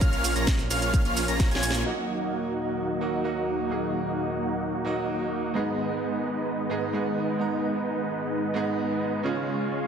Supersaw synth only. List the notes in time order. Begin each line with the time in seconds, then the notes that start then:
0.01 A#3 C#4 F4 F5
0.36 A#3 C#4 F4 C#5 A#5
0.71 A#3 C#4 F4 C#5 F5
1.05 A#3 C#4 F4 C#5 F5
1.28 A#3 C#4 F4 C#5 A#5
1.51 A#3 C#4 F4 C#5 G#5
1.86 A#3 D#4 F#4 D#5 F#5
5.55 G#3 B3 D#4 B4 D#5
9.24 G#3 C#4 F4 C#5 F5